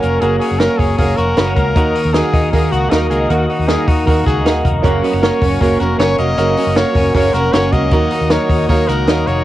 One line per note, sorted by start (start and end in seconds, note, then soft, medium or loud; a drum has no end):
0.00 0.19 F1 medium
0.00 1.76 F#3 medium
0.00 0.21 A#3 medium
0.00 0.22 A#3 medium
0.00 0.22 C#4 medium
0.00 0.41 C#4 medium
0.00 0.22 F#4 medium
0.00 0.22 A#4 medium
0.00 4.80 A#4 medium
0.00 0.22 A#4 medium
0.00 1.73 C#5 medium
0.00 7.89 F#5 medium
0.00 1.73 C#6 medium
0.00 hi-hat pedal medium
0.00 open hi-hat medium
0.21 0.38 F#1 loud
0.21 0.46 A#3 medium
0.21 0.61 A#3 medium
0.21 0.47 C#4 medium
0.21 0.47 F#4 medium
0.21 1.18 F#4 medium
0.21 0.39 G#4 loud
0.21 0.47 A#4 medium
0.21 hi-hat pedal medium
0.21 open hi-hat loud
0.39 0.79 C#4 medium
0.39 0.61 G#4 medium
0.39 hi-hat pedal medium
0.39 open hi-hat medium
0.51 0.67 F#1 medium
0.59 0.85 A#3 medium
0.59 0.99 A#3 medium
0.59 0.85 C#4 medium
0.59 0.85 F#4 medium
0.59 0.80 A#4 loud
0.59 0.86 A#4 medium
0.59 snare loud
0.59 hi-hat pedal medium
0.59 open hi-hat medium
0.79 0.95 F#1 loud
0.79 1.38 C#4 medium
0.79 0.98 G#4 medium
0.79 kick loud
0.79 hi-hat pedal medium
0.79 open hi-hat medium
0.98 1.15 F#1 loud
0.98 1.23 A#3 medium
0.98 1.57 A#3 medium
0.98 1.24 C#4 medium
0.98 1.24 F#4 medium
0.98 1.18 G#4 loud
0.98 1.24 A#4 medium
0.98 kick medium
0.98 hi-hat pedal medium
0.98 open hi-hat medium
1.17 1.34 F1 medium
1.17 1.77 F#4 medium
1.17 1.55 A#4 loud
1.17 hi-hat pedal medium
1.17 open hi-hat medium
1.37 1.53 F#1 loud
1.37 1.62 A#3 medium
1.37 1.48 B3 medium
1.37 1.62 C#4 medium
1.37 1.62 F#4 medium
1.37 1.62 A#4 medium
1.37 snare loud
1.37 hi-hat pedal medium
1.37 open hi-hat medium
1.48 1.80 C#4 soft
1.55 1.72 C#2 medium
1.55 2.15 A#3 medium
1.55 2.15 A#4 loud
1.55 kick loud
1.55 hi-hat pedal medium
1.55 open hi-hat medium
1.75 1.92 D#2 loud
1.75 3.29 D#3 medium
1.75 2.00 A#3 medium
1.75 2.00 D#4 medium
1.75 2.00 F#4 medium
1.75 2.72 F#4 medium
1.75 2.01 A#4 medium
1.75 4.80 D#5 medium
1.75 4.81 D#6 medium
1.75 kick loud
1.75 hi-hat pedal medium
1.75 open hi-hat loud
1.95 2.33 D#4 medium
1.95 hi-hat pedal medium
1.95 open hi-hat medium
2.05 2.21 D#2 loud
2.13 2.39 A#3 medium
2.13 2.53 A#3 medium
2.13 2.39 D#4 medium
2.13 2.39 F#4 medium
2.13 2.51 G#4 loud
2.13 2.39 A#4 medium
2.13 snare loud
2.13 hi-hat pedal medium
2.13 open hi-hat medium
2.34 2.50 D#2 loud
2.34 2.90 D#4 medium
2.34 kick medium
2.34 hi-hat pedal medium
2.34 open hi-hat medium
2.52 2.69 D#2 loud
2.52 2.77 A#3 medium
2.52 3.10 A#3 medium
2.52 2.77 D#4 medium
2.52 2.78 F#4 medium
2.52 2.73 G#4 medium
2.52 2.78 A#4 medium
2.52 kick medium
2.52 hi-hat pedal medium
2.52 open hi-hat medium
2.72 2.88 C#2 medium
2.72 2.92 F#4 medium
2.72 3.30 F#4 medium
2.72 hi-hat pedal medium
2.72 open hi-hat medium
2.90 3.11 D#2 loud
2.90 3.16 A#3 medium
2.90 3.48 D#4 medium
2.90 3.16 D#4 medium
2.90 3.16 F#4 medium
2.90 3.09 A#4 loud
2.90 3.17 A#4 medium
2.90 snare loud
2.90 hi-hat pedal medium
2.90 open hi-hat medium
3.10 3.26 C#2 medium
3.10 3.68 A#3 medium
3.10 3.31 G#4 medium
3.10 hi-hat pedal medium
3.10 open hi-hat medium
3.29 3.46 D#2 loud
3.29 4.84 D#3 medium
3.29 3.54 A#3 medium
3.29 3.54 D#4 medium
3.29 3.48 F#4 medium
3.29 3.55 F#4 medium
3.29 4.26 F#4 medium
3.29 3.55 A#4 medium
3.29 hi-hat pedal medium
3.29 open hi-hat loud
3.49 3.87 D#4 medium
3.49 3.69 F#4 medium
3.49 hi-hat pedal medium
3.49 open hi-hat medium
3.59 3.75 D#2 medium
3.67 3.93 A#3 medium
3.67 4.06 A#3 medium
3.67 3.93 D#4 medium
3.67 3.93 F#4 medium
3.67 3.89 G#4 medium
3.67 3.93 A#4 medium
3.67 snare loud
3.67 hi-hat pedal medium
3.67 open hi-hat medium
3.88 4.04 D#2 loud
3.88 4.44 D#4 medium
3.88 4.06 F#4 medium
3.88 kick loud
3.88 hi-hat pedal medium
3.88 open hi-hat medium
4.05 4.23 D#2 loud
4.05 4.31 A#3 medium
4.05 4.64 A#3 medium
4.05 4.31 D#4 medium
4.05 4.31 F#4 medium
4.05 4.25 F#4 medium
4.05 4.31 A#4 medium
4.05 kick medium
4.05 hi-hat pedal medium
4.05 open hi-hat loud
4.26 4.46 C#2 medium
4.26 4.85 F#4 medium
4.26 4.62 G#4 medium
4.26 kick loud
4.26 hi-hat pedal medium
4.26 open hi-hat medium
4.44 4.61 D#2 loud
4.44 4.69 A#3 medium
4.44 4.70 D#4 medium
4.44 4.88 D#4 medium
4.44 4.70 F#4 medium
4.44 4.70 A#4 medium
4.44 snare loud
4.44 hi-hat pedal medium
4.44 open hi-hat loud
4.65 4.81 F1 medium
4.65 4.84 A#3 medium
4.65 kick loud
4.65 hi-hat pedal medium
4.65 open hi-hat medium
4.82 5.00 F#1 loud
4.82 5.03 F#2 medium
4.82 5.03 C#3 medium
4.82 5.03 F#3 medium
4.82 5.08 A#3 medium
4.82 5.03 A#3 medium
4.82 5.22 A#3 medium
4.82 5.08 C#4 medium
4.82 5.02 C#4 loud
4.82 5.08 F#4 medium
4.82 5.01 F#4 medium
4.82 5.79 F#4 medium
4.82 5.08 A#4 loud
4.82 9.44 A#4 medium
4.82 7.89 C#5 medium
4.82 7.89 C#6 medium
4.82 kick loud
4.82 hi-hat pedal medium
4.82 open hi-hat loud
5.02 5.20 F#3 medium
5.02 5.21 A#3 medium
5.02 5.13 B3 medium
5.02 5.22 C#4 medium
5.02 5.22 F#4 medium
5.02 hi-hat pedal medium
5.02 open hi-hat medium
5.13 5.29 F#1 loud
5.13 5.40 C#4 medium
5.21 5.41 F#3 medium
5.21 5.46 A#3 medium
5.21 5.41 A#3 medium
5.21 5.60 A#3 medium
5.21 5.47 C#4 medium
5.21 5.40 C#4 medium
5.21 5.47 F#4 medium
5.21 5.40 F#4 medium
5.21 5.47 A#4 medium
5.21 5.59 C#5 loud
5.21 snare loud
5.21 hi-hat pedal medium
5.21 open hi-hat medium
5.41 5.58 F#1 loud
5.41 5.60 F#3 soft
5.41 5.61 A#3 medium
5.41 5.98 C#4 medium
5.41 5.61 C#4 medium
5.41 5.60 F#4 medium
5.41 kick medium
5.41 hi-hat pedal medium
5.41 open hi-hat medium
5.60 5.77 F#1 loud
5.60 5.80 F#2 medium
5.60 5.80 C#3 medium
5.60 5.80 F#3 medium
5.60 6.18 A#3 medium
5.60 5.85 A#3 medium
5.60 5.80 A#3 medium
5.60 5.85 C#4 medium
5.60 5.79 C#4 medium
5.60 5.86 F#4 medium
5.60 5.78 F#4 medium
5.60 5.86 A#4 medium
5.60 5.79 C#5 loud
5.60 kick medium
5.60 hi-hat pedal medium
5.60 open hi-hat medium
5.80 5.96 F1 medium
5.80 5.97 F#3 soft
5.80 5.98 A#3 medium
5.80 5.99 C#4 medium
5.80 5.99 F#4 medium
5.80 6.38 F#4 medium
5.80 5.98 A#4 loud
5.80 hi-hat pedal medium
5.80 open hi-hat medium
5.99 6.15 F#1 loud
5.99 6.18 F#3 medium
5.99 6.24 A#3 medium
5.99 6.19 A#3 medium
5.99 6.24 C#4 medium
5.99 6.56 C#4 medium
5.99 6.18 C#4 medium
5.99 6.24 F#4 medium
5.99 6.17 F#4 medium
5.99 6.24 A#4 medium
5.99 6.18 C#5 loud
5.99 snare loud
5.99 hi-hat pedal medium
5.99 open hi-hat loud
6.18 6.35 F1 medium
6.18 6.37 F#3 soft
6.18 6.38 A#3 medium
6.18 6.37 A#3 soft
6.18 6.38 C#4 soft
6.18 6.38 F#4 medium
6.18 6.78 D#5 loud
6.18 hi-hat pedal medium
6.18 open hi-hat medium
6.37 6.54 F#1 loud
6.37 6.57 F#2 medium
6.37 6.57 C#3 medium
6.37 6.57 F#3 medium
6.37 6.62 A#3 medium
6.37 6.76 A#3 medium
6.37 6.57 A#3 medium
6.37 6.62 C#4 medium
6.37 6.56 C#4 medium
6.37 6.63 F#4 medium
6.37 7.34 F#4 medium
6.37 6.55 F#4 medium
6.37 6.63 A#4 medium
6.37 hi-hat pedal medium
6.37 open hi-hat loud
6.56 6.74 F#3 soft
6.56 6.75 A#3 medium
6.56 6.95 C#4 medium
6.56 6.76 C#4 soft
6.56 6.76 F#4 medium
6.56 hi-hat pedal medium
6.56 open hi-hat medium
6.67 6.83 F#1 medium
6.75 6.95 F#3 medium
6.75 7.01 A#3 medium
6.75 6.96 A#3 medium
6.75 7.15 A#3 medium
6.75 7.01 C#4 medium
6.75 6.95 C#4 medium
6.75 7.01 F#4 medium
6.75 6.94 F#4 medium
6.75 7.01 A#4 medium
6.75 7.15 C#5 loud
6.75 snare loud
6.75 hi-hat pedal medium
6.75 open hi-hat medium
6.95 7.11 F#1 loud
6.95 7.14 F#3 soft
6.95 7.14 A#3 medium
6.95 7.14 C#4 medium
6.95 7.53 C#4 medium
6.95 7.14 F#4 medium
6.95 kick loud
6.95 hi-hat pedal medium
6.95 open hi-hat medium
7.14 7.31 F#1 loud
7.14 7.34 F#2 medium
7.14 7.34 C#3 medium
7.14 7.34 F#3 medium
7.14 7.39 A#3 medium
7.14 7.34 A#3 medium
7.14 7.72 A#3 medium
7.14 7.39 C#4 medium
7.14 7.34 C#4 medium
7.14 7.40 F#4 medium
7.14 7.33 F#4 medium
7.14 7.40 A#4 medium
7.14 7.35 C#5 loud
7.14 kick medium
7.14 hi-hat pedal medium
7.14 open hi-hat loud
7.33 7.50 F1 medium
7.33 7.52 F#3 soft
7.33 7.53 A#3 medium
7.33 7.53 C#4 medium
7.33 7.53 F#4 medium
7.33 7.92 F#4 medium
7.33 7.54 A#4 loud
7.33 snare soft
7.33 hi-hat pedal medium
7.33 open hi-hat medium
7.53 7.69 F#1 loud
7.53 7.73 F#3 medium
7.53 7.78 A#3 medium
7.53 7.72 A#3 medium
7.53 7.78 C#4 medium
7.53 7.96 C#4 medium
7.53 7.71 C#4 medium
7.53 7.79 F#4 medium
7.53 7.71 F#4 medium
7.53 7.79 A#4 medium
7.53 7.74 C#5 loud
7.53 snare loud
7.53 hi-hat pedal medium
7.53 open hi-hat loud
7.72 7.89 C#2 medium
7.72 7.91 F#3 soft
7.72 8.30 A#3 medium
7.72 7.91 A#3 soft
7.72 7.92 C#4 medium
7.72 7.92 F#4 medium
7.72 8.32 D#5 loud
7.72 kick loud
7.72 hi-hat pedal medium
7.72 open hi-hat medium
7.91 8.08 D#2 loud
7.91 8.11 D#3 medium
7.91 9.44 D#3 medium
7.91 8.11 F#3 medium
7.91 8.17 A#3 medium
7.91 8.12 A#3 medium
7.91 8.17 D#4 medium
7.91 8.11 D#4 medium
7.91 8.88 F#4 medium
7.91 8.17 F#4 medium
7.91 8.10 F#4 medium
7.91 8.17 A#4 medium
7.91 9.44 D#5 medium
7.91 9.44 F#5 medium
7.91 9.44 D#6 medium
7.91 kick loud
7.91 hi-hat pedal medium
7.91 open hi-hat loud
8.10 8.30 A#3 soft
8.10 8.50 D#4 medium
8.10 8.31 D#4 medium
8.10 8.30 F#4 medium
8.10 hi-hat pedal medium
8.10 open hi-hat medium
8.21 8.37 D#2 loud
8.30 8.50 F#3 medium
8.30 8.55 A#3 medium
8.30 8.69 A#3 medium
8.30 8.50 A#3 medium
8.30 8.55 D#4 medium
8.30 8.50 D#4 medium
8.30 8.56 F#4 medium
8.30 8.49 F#4 medium
8.30 8.56 A#4 medium
8.30 8.68 C#5 loud
8.30 snare loud
8.30 hi-hat pedal medium
8.30 open hi-hat medium
8.49 8.65 D#2 loud
8.49 8.69 A#3 soft
8.49 9.07 D#4 medium
8.49 8.70 D#4 medium
8.49 8.69 F#4 medium
8.49 kick loud
8.49 hi-hat pedal medium
8.49 open hi-hat medium
8.69 8.85 D#2 loud
8.69 8.89 D#3 medium
8.69 8.89 F#3 medium
8.69 8.94 A#3 medium
8.69 9.27 A#3 medium
8.69 8.89 A#3 medium
8.69 8.94 D#4 medium
8.69 8.88 D#4 medium
8.69 8.94 F#4 medium
8.69 8.87 F#4 medium
8.69 8.94 A#4 medium
8.69 8.90 C#5 loud
8.69 kick medium
8.69 hi-hat pedal medium
8.69 open hi-hat medium
8.88 9.08 C#2 medium
8.88 9.07 A#3 soft
8.88 9.08 D#4 medium
8.88 9.08 F#4 medium
8.88 9.44 F#4 medium
8.88 9.28 A#4 loud
8.88 snare soft
8.88 hi-hat pedal medium
8.88 open hi-hat medium
9.07 9.24 D#2 loud
9.07 9.27 F#3 medium
9.07 9.32 A#3 medium
9.07 9.27 A#3 medium
9.07 9.33 D#4 medium
9.07 9.44 D#4 medium
9.07 9.27 D#4 medium
9.07 9.33 F#4 medium
9.07 9.26 F#4 medium
9.07 9.33 C#5 medium
9.07 snare loud
9.07 hi-hat pedal medium
9.07 open hi-hat medium
9.27 9.43 F1 medium
9.27 9.44 A#3 medium
9.27 9.44 A#3 soft
9.27 9.44 D#4 medium
9.27 9.44 F#4 medium
9.27 9.44 C#5 loud
9.27 hi-hat pedal medium
9.27 open hi-hat medium